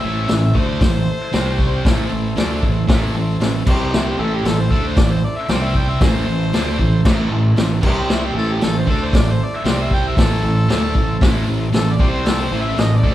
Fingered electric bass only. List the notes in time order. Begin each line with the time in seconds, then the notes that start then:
0.04 A1
0.30 A1
0.55 D2
0.81 A1
1.34 C2
1.85 A1
2.11 A1
2.37 D2
2.63 A1
2.89 A1
3.14 A1
3.40 A1
3.67 C2
4.18 A1
4.45 A1
4.71 D2
4.97 A1
5.49 C2
6.01 A1
6.28 A1
6.53 D2
6.79 A1
7.05 A1
7.31 A1
7.57 A1
7.83 C2
8.35 A1
8.62 A1
8.87 D2
9.14 A1
9.65 C2
10.17 A1
10.44 A1
10.69 D2
10.95 A1
11.21 A1
11.47 A1
11.73 A1
11.99 C2
12.51 A1
12.78 A1
13.04 D2